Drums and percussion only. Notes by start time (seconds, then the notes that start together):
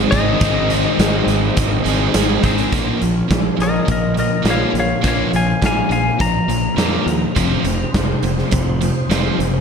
0.12 kick, closed hi-hat
0.41 kick, closed hi-hat
0.70 closed hi-hat
0.99 snare, closed hi-hat
1.28 closed hi-hat
1.57 kick, closed hi-hat
1.86 snare, closed hi-hat
2.14 snare, closed hi-hat
2.43 kick, closed hi-hat
2.58 closed hi-hat
2.72 kick, closed hi-hat
3.02 closed hi-hat
3.31 kick, snare, closed hi-hat
3.60 snare, closed hi-hat
3.88 kick, closed hi-hat
4.17 closed hi-hat
4.45 snare, closed hi-hat
4.75 closed hi-hat
5.04 kick, closed hi-hat
5.33 closed hi-hat
5.62 kick, snare, closed hi-hat
5.91 closed hi-hat
6.20 kick, closed hi-hat
6.49 closed hi-hat
6.78 snare, closed hi-hat
7.08 closed hi-hat
7.36 kick, closed hi-hat
7.64 closed hi-hat
7.94 kick, snare, closed hi-hat
8.23 closed hi-hat
8.38 snare
8.51 kick, closed hi-hat
8.82 closed hi-hat
9.11 snare, closed hi-hat
9.40 closed hi-hat